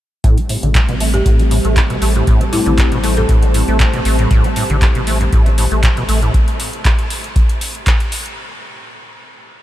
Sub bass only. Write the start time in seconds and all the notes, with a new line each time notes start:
0.24 A1
0.63 A1
0.89 A1
1.26 A1
1.65 A1
2.02 A1
2.27 A1
2.66 A1
2.92 A1
3.29 A1
3.68 A1
4.05 A1
4.31 A1
4.70 A1
4.95 A1
5.33 A1
5.72 A1
6.09 A1